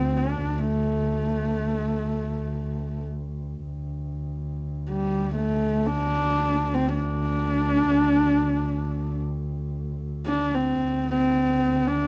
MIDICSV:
0, 0, Header, 1, 3, 480
1, 0, Start_track
1, 0, Tempo, 500000
1, 11589, End_track
2, 0, Start_track
2, 0, Title_t, "Horsehead fiddle"
2, 0, Program_c, 0, 110
2, 0, Note_on_c, 0, 60, 73
2, 162, Note_on_c, 0, 62, 61
2, 176, Note_off_c, 0, 60, 0
2, 564, Note_on_c, 0, 57, 65
2, 578, Note_off_c, 0, 62, 0
2, 2909, Note_off_c, 0, 57, 0
2, 4697, Note_on_c, 0, 55, 61
2, 5105, Note_off_c, 0, 55, 0
2, 5141, Note_on_c, 0, 57, 68
2, 5631, Note_on_c, 0, 62, 83
2, 5645, Note_off_c, 0, 57, 0
2, 6473, Note_on_c, 0, 60, 73
2, 6487, Note_off_c, 0, 62, 0
2, 6661, Note_off_c, 0, 60, 0
2, 6667, Note_on_c, 0, 62, 78
2, 8799, Note_off_c, 0, 62, 0
2, 9852, Note_on_c, 0, 62, 80
2, 10125, Note_on_c, 0, 60, 72
2, 10140, Note_off_c, 0, 62, 0
2, 10653, Note_off_c, 0, 60, 0
2, 10664, Note_on_c, 0, 60, 85
2, 11395, Note_on_c, 0, 62, 86
2, 11410, Note_off_c, 0, 60, 0
2, 11589, Note_off_c, 0, 62, 0
2, 11589, End_track
3, 0, Start_track
3, 0, Title_t, "Double bass"
3, 0, Program_c, 1, 43
3, 0, Note_on_c, 1, 38, 56
3, 3513, Note_off_c, 1, 38, 0
3, 3519, Note_on_c, 1, 38, 55
3, 10389, Note_off_c, 1, 38, 0
3, 10395, Note_on_c, 1, 38, 61
3, 11589, Note_off_c, 1, 38, 0
3, 11589, End_track
0, 0, End_of_file